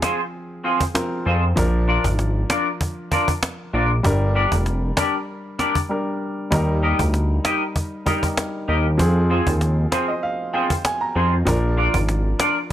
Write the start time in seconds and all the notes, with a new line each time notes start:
Already playing: F3 C4 G#4
0.02 C4 F4 G#4 C5, cajon slap
0.64 C4 F4 G#4 C5
0.81 cajon bass
0.94 F3 C4 A#4, cajon slap
1.26 F2 C4 F4 G#4 C5
1.56 A#1 F3 D4 A#4, cajon bass
1.88 D4 F4 A#4 D5
2.04 G#1, cajon bass
2.19 cajon slap
2.50 D4 F4 A#4 D5, cajon slap
2.81 cajon bass
3.11 D4 F4 A#4 D5, cajon bass
3.28 cajon bass
3.43 cajon slap
3.73 A#1 D4 F4 A#4 D5
4.03 G1 G3 D4 A#4, cajon bass
4.35 D4 G4 A#4 D5
4.52 F1, cajon bass
4.66 cajon slap
4.97 D4 G4 A#4 D5, cajon bass, cajon slap
5.59 D4 G4 A#4 D5, cajon slap
5.75 cajon bass
5.89 G3 D4 A#4
6.50 D#2 G3 D#4 A#4, cajon bass
6.83 D#4 G4 A#4 D#5
6.99 D2, cajon bass
7.14 cajon slap
7.44 D#4 G4 A#4 D#5, cajon slap
7.76 cajon bass
8.06 G3 D#4 G4 A#4 D#5, cajon bass
8.23 cajon bass
8.37 cajon slap
8.68 D#2 D#4 G4 A#4 D#5
8.97 F2 F3 C4 G#4, cajon bass
9.30 C4 F4 G#4 C5
9.47 D#2, cajon bass
9.61 cajon slap
9.92 C4 F4 G#4 C5, cajon slap
10.08 D#5
10.23 F5
10.54 C4 F4 G#4 C5 G5
10.70 cajon bass
10.85 G#5, cajon slap
11.01 A#5
11.15 F2 C4 F4 G#4 C5
11.45 A#1 F3 D4 A#4, cajon bass
11.77 D4 F4 A#4 D5
11.94 G#1, cajon bass
12.09 cajon slap
12.39 D4 F4 A#4 D5, cajon slap